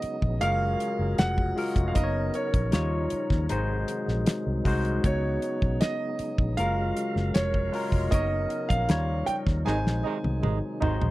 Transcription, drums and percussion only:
0.02 closed hi-hat medium
0.22 kick medium
0.41 closed hi-hat loud
0.80 closed hi-hat medium
1.18 snare loud
1.18 closed hi-hat medium
1.38 kick medium
1.58 open hi-hat medium
1.76 kick loud
1.76 closed hi-hat medium
1.95 kick loud
1.95 closed hi-hat loud
2.34 closed hi-hat medium
2.54 kick loud
2.54 closed hi-hat medium
2.72 snare loud
2.72 closed hi-hat medium
3.10 closed hi-hat medium
3.30 kick medium
3.30 snare soft
3.49 closed hi-hat loud
3.88 closed hi-hat medium
4.08 snare soft
4.26 snare loud
4.26 closed hi-hat medium
4.65 kick loud
4.65 open hi-hat medium
4.85 closed hi-hat soft
5.04 kick loud
5.04 closed hi-hat loud
5.42 closed hi-hat medium
5.62 kick medium
5.81 snare loud
5.81 closed hi-hat medium
6.19 closed hi-hat medium
6.38 kick loud
6.58 closed hi-hat loud
6.97 closed hi-hat medium
7.17 snare soft
7.35 snare loud
7.35 closed hi-hat medium
7.54 kick medium
7.74 open hi-hat medium
7.92 kick medium
8.12 kick loud
8.12 closed hi-hat loud
8.50 closed hi-hat medium
8.70 kick medium
8.70 closed hi-hat medium
8.89 snare loud
8.89 closed hi-hat medium
9.27 closed hi-hat medium
9.47 kick medium
9.47 snare soft
9.67 snare medium
9.87 snare medium
10.24 high tom medium
10.43 mid tom medium
10.82 floor tom loud
11.02 floor tom medium

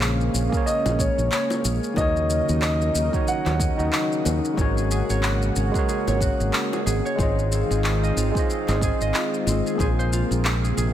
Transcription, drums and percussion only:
0.01 clap medium
0.01 shaker soft
0.21 shaker soft
0.35 shaker medium
0.53 kick loud
0.53 shaker soft
0.67 shaker soft
0.86 high bongo medium
0.86 shaker soft
0.99 kick loud
0.99 shaker medium
1.19 shaker soft
1.32 clap loud
1.32 shaker soft
1.50 high bongo medium
1.50 shaker soft
1.65 shaker medium
1.84 shaker soft
1.96 kick loud
1.96 high bongo soft
1.96 shaker soft
2.16 shaker soft
2.30 shaker medium
2.49 shaker soft
2.62 clap medium
2.62 shaker soft
2.81 shaker soft
2.95 shaker medium
3.13 kick loud
3.13 shaker soft
3.28 shaker soft
3.46 clap soft
3.46 high bongo medium
3.46 shaker soft
3.60 kick loud
3.60 shaker medium
3.79 shaker soft
3.93 clap medium
3.93 shaker soft
4.12 shaker soft
4.25 high bongo medium
4.25 shaker medium
4.45 shaker soft
4.57 kick loud
4.57 high bongo soft
4.57 shaker soft
4.78 shaker soft
4.91 shaker medium
5.10 shaker soft
5.23 clap medium
5.23 shaker soft
5.42 shaker soft
5.56 shaker medium
5.74 kick loud
5.74 shaker soft
5.89 shaker soft
6.08 high bongo medium
6.08 shaker soft
6.21 kick loud
6.21 shaker medium
6.40 shaker soft
6.53 clap loud
6.53 shaker soft
6.73 high bongo medium
6.73 shaker soft
6.87 shaker medium
7.06 shaker soft
7.19 kick loud
7.19 high bongo soft
7.19 shaker soft
7.39 shaker soft
7.52 shaker medium
7.71 shaker soft
7.84 clap medium
7.84 shaker soft
8.04 shaker soft
8.18 shaker medium
8.35 kick loud
8.35 shaker soft
8.50 shaker soft
8.68 clap soft
8.68 high bongo medium
8.68 shaker soft
8.81 kick loud
8.81 shaker medium
9.01 shaker soft
9.14 clap medium
9.14 shaker soft
9.34 shaker soft
9.47 high bongo soft
9.47 shaker medium
9.67 shaker soft
9.79 kick loud
9.79 high bongo soft
9.79 shaker soft
9.99 shaker soft
10.13 shaker medium
10.32 shaker soft
10.45 clap medium
10.45 shaker soft
10.64 shaker soft
10.78 shaker medium

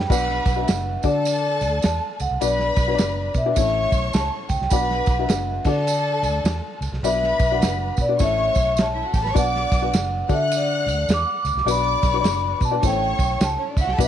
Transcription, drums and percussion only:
0.10 kick loud
0.10 crash loud
0.10 tambourine loud
0.29 snare soft
0.45 kick loud
0.45 snare soft
0.45 ride medium
0.45 tambourine medium
0.68 snare loud
0.68 ride medium
0.68 tambourine loud
1.03 kick loud
1.03 ride medium
1.03 tambourine medium
1.25 ride medium
1.25 tambourine loud
1.61 ride medium
1.61 tambourine medium
1.82 snare loud
1.82 ride medium
1.82 tambourine medium
2.20 ride medium
2.20 tambourine medium
2.41 ride medium
2.41 tambourine loud
2.59 snare soft
2.76 kick medium
2.76 snare soft
2.76 ride medium
2.76 tambourine medium
2.98 snare loud
2.98 ride medium
2.98 tambourine loud
3.34 kick medium
3.34 ride medium
3.34 tambourine medium
3.56 kick loud
3.56 ride medium
3.56 tambourine loud
3.92 kick medium
3.92 ride medium
3.92 tambourine medium
4.13 snare loud
4.13 ride medium
4.13 tambourine medium
4.49 kick medium
4.49 ride medium
4.49 tambourine medium
4.62 snare soft
4.70 kick loud
4.70 ride medium
4.70 tambourine loud
4.91 snare soft
5.06 kick loud
5.06 snare soft
5.06 ride medium
5.06 tambourine medium
5.29 snare loud
5.29 ride medium
5.29 tambourine loud
5.64 kick loud
5.64 tambourine soft
5.64 crash medium
5.87 ride medium
5.87 tambourine loud
6.23 ride medium
6.23 tambourine medium
6.45 snare loud
6.45 ride medium
6.45 tambourine medium
6.82 ride medium
6.82 tambourine medium
6.93 snare soft
7.04 ride medium
7.04 tambourine loud
7.23 snare soft
7.39 kick loud
7.39 ride medium
7.39 tambourine soft
7.62 snare loud
7.62 ride medium
7.62 tambourine medium
7.97 kick medium
7.97 ride medium
7.97 tambourine medium
8.19 kick loud
8.19 ride medium
8.19 tambourine medium
8.55 kick medium
8.55 ride medium
8.55 tambourine medium
8.77 snare loud
8.77 ride medium
8.77 tambourine medium
9.14 kick medium
9.14 open hi-hat soft
9.14 ride medium
9.14 tambourine medium
9.26 snare soft
9.36 kick loud
9.36 hi-hat pedal medium
9.36 ride medium
9.36 tambourine loud
9.55 snare soft
9.71 kick loud
9.71 snare soft
9.71 ride medium
9.71 tambourine medium
9.94 snare loud
9.94 ride medium
9.94 tambourine loud
10.29 kick loud
10.29 ride medium
10.29 tambourine medium
10.51 ride medium
10.51 tambourine loud
10.88 ride medium
10.88 tambourine medium
11.09 snare loud
11.09 ride medium
11.09 tambourine medium
11.45 ride medium
11.45 tambourine medium
11.58 snare soft
11.68 ride medium
11.68 tambourine loud
12.03 kick medium
12.03 snare soft
12.03 ride medium
12.03 tambourine medium
12.24 snare loud
12.24 ride medium
12.24 tambourine loud
12.61 kick medium
12.61 ride medium
12.61 tambourine medium
12.83 kick loud
12.83 ride medium
12.83 tambourine medium
13.19 kick medium
13.19 ride medium
13.19 tambourine medium
13.41 snare loud
13.41 ride medium
13.41 tambourine medium
13.77 kick medium
13.77 ride medium
13.77 tambourine medium
13.89 snare soft
13.98 kick loud
13.98 ride medium
13.98 tambourine loud

